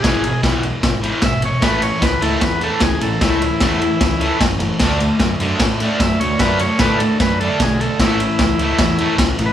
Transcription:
<<
  \new Staff \with { instrumentName = "Transistor combo organ" } { \time 4/4 \key a \major \tempo 4 = 151 gis'4 r2 e''8 cis''8 | b'8 cis''8 b'8 a'8 b'8 a'8 gis'8 a'8 | e'2. r4 | r2. e''8 cis''8 |
b'8 cis''8 b'8 a'8 b'8 a'8 gis'8 a'8 | e'2. \tuplet 3/2 { r4 b'8 } | }
  \new Staff \with { instrumentName = "Distorted electric guitar" } { \clef bass \time 4/4 \key a \major <e, b, e>8 <e, b,>8 <e, b, e>8 <e, b,>8 <e, b,>8 <e, b, e>8 <e, b,>8 <e, b,>8 | <a, e a>8 <a, e>8 <a, e>8 <a, e a>8 <a, e>8 <a, e a>8 <a, e>8 <a, e>8 | <a, e a>8 <a, e>8 <a, e a>8 <a, e>8 <a, e>8 <a, e a>8 <a, e>8 <a, e>8 | <d a d'>8 <d a>8 <d a>8 <d a d'>8 <d a>8 <d a d'>8 <d a>8 <d a>8 |
<d a d'>8 <d a>8 <d a d'>8 <d a>8 <d a>8 <d a d'>8 <d a>8 <d a>8 | <a, e a>8 <a, e>8 <a, e>8 <a, e a>8 <a, e>8 <a, e a>8 <a, e>8 <a, e>8 | }
  \new Staff \with { instrumentName = "Picked electric bass" } { \clef bass \time 4/4 \key a \major gis,,4 b,,4 gis,,4 gis,,4 | a,,4 cis,8 cis,8 e,4 cis,8 a,,8 | cis,4 e,4 cis,4 fis,,4 | d,4 fis,8 fis,8 a,4 fis,8 d,8 |
fis,4 a,4 fis,4 b,,4 | a,,4 cis,8 cis,8 e,4 cis,8 a,,8 | }
  \new DrumStaff \with { instrumentName = "Drums" } \drummode { \time 4/4 <bd cymr sn>8 cymr8 <bd cymr sn>8 cymr8 <bd cymr sn>8 cymr8 <bd cymr sn>8 cymr8 | <bd cymr sn>8 cymr8 <bd cymr sn>8 cymr8 <bd cymr sn>8 cymr8 <bd cymr sn>8 cymr8 | <bd cymr sn>8 cymr8 <bd cymr sn>8 cymr8 <bd cymr sn>8 cymr8 <bd cymr sn>8 cymr8 | <cymc bd sn>8 cymr8 <bd cymr sn>8 cymr8 <bd cymr sn>8 cymr8 <bd cymr sn>8 cymr8 |
<bd cymr sn>8 cymr8 <bd cymr sn>8 cymr8 <bd cymr sn>8 cymr8 <bd cymr sn>8 cymr8 | <bd cymr sn>8 cymr8 <bd cymr sn>8 cymr8 <bd cymr sn>8 cymr8 <bd cymr sn>8 cymr8 | }
>>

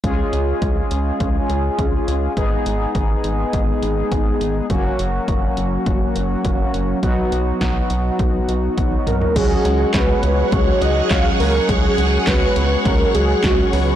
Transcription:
<<
  \new Staff \with { instrumentName = "String machine" } { \time 4/4 \key des \mixolydian \tempo 4 = 103 r1 | r1 | r1 | r1 |
<aes' des'' ges'' des'''>1~ | <aes' des'' ges'' des'''>1 | }
  \new Staff \with { instrumentName = "Analog synth lead" } { \time 4/4 \key des \mixolydian r1 | r1 | r1 | r2. r8 bes'8 |
aes'4 ces''4 des''8 ees''8 f''8 bes'8 | aes'4 ces''4 bes'8 aes'8 ges'8 ces''8 | }
  \new Staff \with { instrumentName = "Analog polysynth" } { \time 4/4 \key des \mixolydian <aes des' f' aes'>1 | <aes ces' ees' aes'>1 | <ges bes des' ges'>1 | <ges ces' ees' ges'>1 |
<ges aes des' ges'>1~ | <ges aes des' ges'>1 | }
  \new Staff \with { instrumentName = "Analog synth bass" } { \clef bass \time 4/4 \key des \mixolydian des,8 des,8 des,8 des,8 des,8 des,8 des,8 des,8 | aes,,8 aes,,8 aes,,8 aes,,8 aes,,8 aes,,8 aes,,8 aes,,8 | ges,,8 ges,,8 ges,,8 ges,,8 ges,,8 ges,,8 ges,,8 ges,,8 | ces,8 ces,8 ces,8 ces,8 ces,8 ces,8 ces,8 ces,8 |
des,8 des,8 des,8 des,8 des,8 des,8 des,8 des,8 | des,8 des,8 des,8 des,8 des,8 des,8 des,8 des,8 | }
  \new DrumStaff \with { instrumentName = "Drums" } \drummode { \time 4/4 <hh bd>8 hh8 <hh bd>8 hh8 <hh bd>8 hh8 <hh bd>8 hh8 | <hh bd>8 hh8 <hh bd>8 hh8 <hh bd>8 hh8 <hh bd>8 hh8 | <hh bd>8 hh8 <hh bd>8 hh8 <hh bd>8 hh8 <hh bd>8 hh8 | <hh bd>8 hh8 <hh bd sn>8 hh8 <hh bd>8 hh8 <hh bd tommh>8 <hh toml>16 tomfh16 |
<cymc hh bd>8 hh8 <hc hh bd sn>8 hh8 <hh bd>8 hh8 <hc hh bd sn>8 hho8 | <hh bd>8 hh8 <hc hh bd sn>8 hh8 <hh bd>8 hh8 <hc hh bd sn>8 hho8 | }
>>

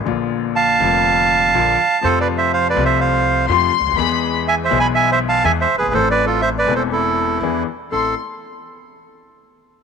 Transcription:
<<
  \new Staff \with { instrumentName = "Violin section" } { \time 4/4 \key a \minor \tempo 4 = 122 r1 | r2. c'''4 | b''8. r2. r16 | r1 |
c'''8 r2. r8 | }
  \new Staff \with { instrumentName = "Bandoneon" } { \time 4/4 \key a \minor << { r4 a''2. | \tuplet 3/2 { c''8 d''8 e''8 f''8 d''8 e''8 } f''4 r4 | r4 \tuplet 3/2 { gis''8 e''8 b''8 gis''8 e''8 a''8 gis''8 e''8 b'8 } | \tuplet 3/2 { c''8 d''8 a'8 e''8 d''8 c''8 } a'4 r4 |
a'8 r2. r8 | } \\ { r4 f''2. | \tuplet 3/2 { a'8 b'8 c''8 c''8 b'8 c''8 } c''4 r4 | r4 \tuplet 3/2 { e''8 c''8 gis''8 e''8 c''8 f''8 e''8 c''8 gis'8 } | \tuplet 3/2 { a'8 b'8 f'8 c''8 b'8 a'8 } e'4. r8 |
r1 | } >> }
  \new Staff \with { instrumentName = "Grand piano" } { \clef bass \time 4/4 \key a \minor <bes,, bes, d f bes f'>4. <f,, f, d f bes f'>4. <bes,, bes, d f bes f'>8 r8 | <f, c f a f'>4. <c, c f a f'>4. <f, c f a f'>8 r32 cis,32 d,32 dis,32 | <e, e gis b gis'>4. <b,, b, e gis b gis'>4. <e, e gis b gis'>8 r32 fis,,32 g,,32 gis,,32 | <a,, a, e a c' a'>4. <e,, e, e a c' a'>4. <e, e b d' gis'>8 r8 |
<a,, c' e' a'>8 r2. r8 | }
  \new Staff \with { instrumentName = "Upright bass" } { \clef bass \time 4/4 \key a \minor bes,,4~ bes,,16. r32 f,,4~ f,,16. r32 bes,,16. r8 r32 | f,4~ f,16. r32 c,4~ c,16. r32 f,16. r16 cis,32 d,32 dis,32 | e,4~ e,16. r32 b,,4~ b,,16. r32 e,16. r16 fis,,32 g,,32 gis,,32 | a,,4~ a,,16. r32 e,,4~ e,,16. r32 e,16. r8 r32 |
a,,8 r2. r8 | }
>>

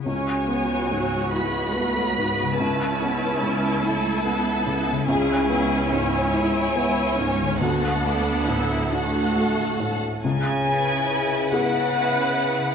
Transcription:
<<
  \new Staff \with { instrumentName = "Violin section" } { \time 6/8 \key cis \phrygian \tempo 4. = 47 r2. | r2. | r2. | r2. |
gis''4. fis''4. | }
  \new Staff \with { instrumentName = "Violin section" } { \time 6/8 \key cis \phrygian << { gis''4. b''4. | a''2. | gis''4. gis''4. | fis''4. fis''4~ fis''16 r16 |
r8 <e' b'>4. <e' b'>4 | } \\ { cis''4. b'4.~ | b'4. a'4. | gis'8 gis'8 cis''2 | a'4. a'4~ a'16 r16 |
r2. | } >> }
  \new Staff \with { instrumentName = "Harp" } { \time 6/8 \key cis \phrygian <cis b e' gis'>2. | <cis b e' a'>2. | <cis b e' gis'>2. | <d a d' fis'>2. |
cis8 b8 gis'8 b'8 e''4 | }
  \new Staff \with { instrumentName = "Viola section" } { \time 6/8 \key cis \phrygian << { fis'2. | e'2. | e'2. | fis'8 d'8 e'8 fis'4~ fis'16 r16 |
r4. b'4. | } \\ { cis'8 b8 fis8 gis8 a8 b8 | cis'4. a8 b8 b8 | cis'4. e'8 e'8 cis'8 | b4. a4~ a16 r16 |
r2. | } >> }
  \new Staff \with { instrumentName = "Felt piano" } { \time 6/8 \key cis \phrygian cis,8 b8 gis,8 e'8 b8 gis,8 | cis,8 b8 cis8 e'8 b8 cis8 | cis,8 b8 gis,8 e'8 b8 gis,8 | d,8 a8 a,8 d'8 a8 a,8 |
cis,4. <b e' gis'>4. | }
  \new Staff \with { instrumentName = "Cello section" } { \clef bass \time 6/8 \key cis \phrygian cis,2.~ | cis,2. | cis,2. | d,2~ d,8. r16 |
cis4. cis4. | }
>>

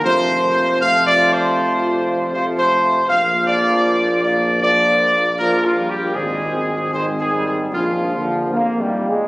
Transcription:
<<
  \new Staff \with { instrumentName = "Trumpet section" } { \time 4/4 \key bes \mixolydian \tempo 4 = 78 c''4 \tuplet 3/2 { f''8 d''8 c''8~ } c''4 \tuplet 3/2 { c''8 c''4 } | f''8 d''4 d''8 d''4 \tuplet 3/2 { bes'8 f'8 g'8 } | aes'4 \tuplet 3/2 { c''8 aes'8 aes'8 } f'4 r4 | }
  \new Staff \with { instrumentName = "French horn section" } { \time 4/4 \key bes \mixolydian << { <a f'>4 <a f'>2 <a f'>4 | <bes f'>2 <bes f'>4 <bes f'>4 | c'4 c'4 <bes d'>8 r8 c'8 bes8 | } \\ { r1 | r1 | r2 r8 d8 \tuplet 3/2 { f8 ees8 f8 } | } >> }
  \new Staff \with { instrumentName = "Trombone section" } { \clef bass \time 4/4 \key bes \mixolydian << { f4 f2 f4 | f2 f4 f8 g8 | aes4 aes8 g8 f8 f8 \tuplet 3/2 { bes8 g8 aes8 } | } \\ { c4 c2 c4 | bes,2 bes,4 bes,4 | ees4 ees4 bes,8 r4. | } >> }
  \new Staff \with { instrumentName = "Tuba" } { \clef bass \time 4/4 \key bes \mixolydian f,1 | bes,,1 | aes,,2 bes,,4. r8 | }
>>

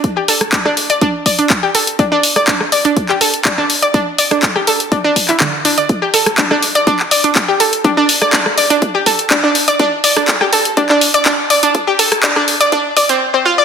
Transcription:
<<
  \new Staff \with { instrumentName = "Synth pluck" } { \time 4/4 \key c \major \tempo 4 = 123 r16 g'16 a'16 r16 d'16 d'16 r16 d''16 d'16 r16 d''16 d'16 r16 g'16 a'16 r16 | d'16 d'16 r16 d''16 d'16 r16 d''16 d'16 r16 g'16 a'16 r16 d'16 d'16 r16 d''16 | d'16 r16 d''16 d'16 r16 g'16 a'16 r16 d'16 d'16 r16 e'16 d16 r16 d'16 d''16 | r16 g'16 a'16 r16 d'16 d'16 r16 d''16 d'16 r16 d''16 d'16 r16 g'16 a'16 r16 |
d'16 d'16 r16 d''16 d'16 r16 d''16 d'16 r16 g'16 a'16 r16 d'16 d'16 r16 d''16 | d'16 r16 d''16 d'16 r16 g'16 a'16 r16 d'16 d'16 r16 d''16 d'16 r16 d''16 d'16 | r16 g'16 a'16 r16 d'16 d'16 r16 d''16 d'16 r16 d''16 c'16 r16 c'16 f'16 d''16 | }
  \new DrumStaff \with { instrumentName = "Drums" } \drummode { \time 4/4 <hh bd>8 hho16 <hh ss>16 <hc hh bd>16 ss16 hho16 hh16 <hh bd>8 <hho bd>16 hh16 <hc hh bd>8 hho16 hh16 | <hh bd>8 hho16 <hh ss>16 <hc hh bd>16 ss16 hho16 hh16 <hh bd>16 hc16 hho16 hh16 <hc hh bd>8 hho16 hh16 | <hh bd>8 hho16 <hh ss>16 <hc hh bd>16 ss16 hho16 hh16 <hh bd>8 <hho bd>16 <hc hh>16 <hc hh bd>8 hho16 hh16 | <hh bd>8 hho16 <hh ss>16 <hc hh bd>16 ss16 hho16 hh16 <hh bd>16 hc16 hho16 hh16 <hc hh bd>8 hho16 hh16 |
<hh bd>8 hho16 <hh ss>16 <hc hh bd>16 ss16 hho16 hh16 <hh bd>8 <hho bd>16 hh16 <hc hh bd>8 hho16 hh16 | <hh bd>8 hho16 <hh ss>16 <hc hh bd>16 ss16 hho16 hh16 <hh bd>16 hc16 hho16 hh16 <hc hh bd>8 hho16 hh16 | <hh bd>8 hho16 <hh ss>16 <hc hh bd>16 ss16 hho16 hh16 <hh bd>8 <hho bd>16 hh16 r4 | }
>>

